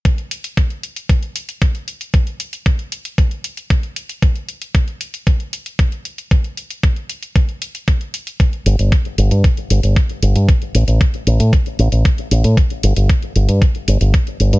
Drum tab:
HH |xxxxxxxxxxxxxxxx|xxxxxxxxxxxxxxxx|xxxxxxxxxxxxxxxx|xxxxxxxxxxxxxxxx|
BD |o---o---o---o---|o---o---o---o---|o---o---o---o---|o---o---o---o---|

HH |xxxxxxxxxxxxxxxx|xxxxxxxxxxxxxxxx|xxxxxxxxxxxxxxxx|
BD |o---o---o---o---|o---o---o---o---|o---o---o---o---|